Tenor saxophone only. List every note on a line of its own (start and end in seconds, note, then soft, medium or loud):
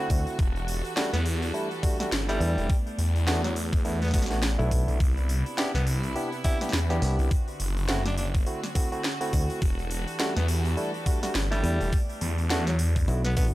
1.13 1.24 B3 medium
2.29 2.76 G3 loud
3.44 3.55 F#3 medium
4.02 4.09 B3 medium
4.14 4.25 B3 medium
5.75 5.86 B3 medium
6.44 6.60 E4 medium
8.06 8.13 D4 medium
8.18 8.28 D4 medium
10.37 10.47 B3 medium
11.52 11.99 G3 loud
12.67 12.78 F#3 medium
13.25 13.33 B3 medium
13.37 13.48 B3 medium